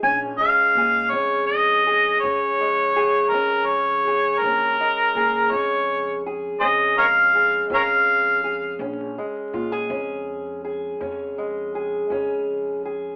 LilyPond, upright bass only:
\new Staff \with { instrumentName = "Upright bass" } { \clef bass \time 12/8 \key bes \minor \tempo 4. = 55 bes,,8 r8 bes,8 f,4. f,4. f,4. | bes,,8 r8 bes,8 f,4. f,4. f,4. | bes,,8 r8 bes,8 f,4. f,4. f,4. | }